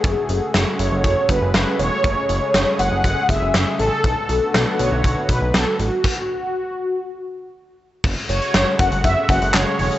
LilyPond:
<<
  \new Staff \with { instrumentName = "Analog polysynth" } { \time 4/4 \key fis \minor \tempo 4 = 120 gis'4. cis''8 cis''8 b'8 b'8 cis''8~ | cis''4. fis''8 fis''8 e''8 e''8 a'8~ | a'4. cis''4 b'8 a'8 fis'8~ | fis'2.~ fis'8 r8 |
r8 cis''4 fis''8 e''8 fis''8 cis''4 | }
  \new Staff \with { instrumentName = "Analog synth pad" } { \time 4/4 \key fis \minor << { fis'1 | gis'1 | fis'1 | r1 |
fis'1 | } \\ { <cis gis a>1~ | <cis gis a>1 | <d a b>1 | r1 |
<cis gis a>1 | } >> }
  \new Staff \with { instrumentName = "Analog synth bass" } { \clef bass \time 4/4 \key fis \minor fis,,16 r16 fis,,16 r16 fis,,16 r16 fis,,16 fis,,16 fis,,16 r16 fis,,16 fis,,16 fis,,16 r16 e,,16 r16 | fis,,16 r16 fis,,16 r16 fis,,16 r16 fis,,16 fis,,16 fis,,16 r16 fis,,16 fis,,16 fis,,16 r16 a,,16 r16 | b,,16 r16 b,,16 r16 b,,16 r16 b,,16 b,,16 b,,16 r16 b,,16 b,,16 b,,16 r16 a,,16 r16 | r1 |
fis,,16 r16 fis,,16 r16 fis,,16 r16 fis,,16 fis,,16 fis,,16 r16 fis,,16 fis,,16 fis,,16 r16 e,,16 r16 | }
  \new DrumStaff \with { instrumentName = "Drums" } \drummode { \time 4/4 <hh bd>8 hh8 <hh sn>8 hh8 <hh bd>8 <hh bd>8 <hh sn>8 hh8 | <hh bd>8 hh8 <hh sn>8 hh8 <hh bd>8 <hh bd>8 <hh sn>8 hh8 | <hh bd>8 hh8 <hh sn>8 hh8 <hh bd>8 <hh bd>8 <hh sn>8 hh8 | <cymc bd>4 r4 r4 r4 |
<cymc bd>8 hh16 hh16 <hh sn>8 <hh bd>16 hh16 <hh bd>8 <hh bd>16 hh16 <hc hh sn>8 hho16 hh16 | }
>>